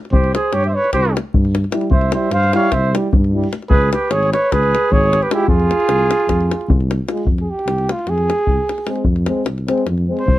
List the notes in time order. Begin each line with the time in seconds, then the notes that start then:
0.05 davul high
0.11 C2 G4 C5, davul low
0.24 davul high
0.34 G#4 C5, davul high
0.53 G2 G4 C#5, davul high
0.64 E5, davul high
0.69 C5
0.74 B4 C#5
0.84 davul high
0.93 C2 G4 C5, davul high, davul low
1.05 davul high
1.17 davul high
1.34 G2, davul low
1.45 davul high
1.55 davul high
1.64 davul high
1.72 G3 E4, davul high
1.81 davul high
1.90 C2 C5 E5, davul low
2.01 davul high
2.12 G3 E4 C5 E5, davul high
2.31 G2 C5 F5, davul high
2.43 davul high
2.53 G3 E4 C#5 F5, davul high
2.63 davul high
2.72 C2 C5 E5, davul high, davul low
2.94 G3 E4, davul high
3.13 G2, davul low
3.24 davul high
3.33 G3 E4
3.44 davul high
3.53 davul high
3.62 davul high
3.69 C#2 G#4 B4, davul low
3.82 davul high
3.92 G4 B4, davul high
4.10 G#1 G#4 C#5, davul high
4.23 davul high
4.32 B4 C#5, davul high
4.52 C#2 G#4 B4, davul high, davul low
4.63 davul high
4.75 davul high
4.91 G#1 G#4 C#5, davul low
5.04 davul high
5.13 davul high
5.22 G4 B4, davul high
5.31 G#3 E4 F4 G4, davul high
5.40 davul high
5.48 F2 F4 G#4, davul low
5.60 davul high
5.71 davul high
5.80 davul high
5.89 C2, davul high
5.99 davul high
6.11 davul high
6.20 davul high
6.28 F2, davul high, davul low
6.41 davul high
6.51 davul high
6.61 davul high
6.68 C2, davul low
6.81 davul high
6.91 davul high
7.08 G#3 F4, davul high
7.17 davul high
7.25 F2, davul low
7.38 G#4, davul high
7.50 G4
7.59 davul high
7.66 C2, davul high
7.78 davul high
7.89 F4, davul high
7.99 davul high
8.07 F2 G#4, davul high
8.18 davul high
8.30 davul high
8.39 davul high
8.47 C2, davul low
8.69 davul high
8.78 davul high
8.87 G#3 C4, davul high
8.96 davul high
9.04 F2, davul low
9.16 davul high
9.26 G#3 C4, davul high
9.46 C2, davul high
9.58 davul high
9.68 G#3 C4, davul high
9.78 davul high
9.86 F2, davul high
9.98 davul high
10.08 G#3 C4
10.19 C5, davul high
10.26 C2, davul low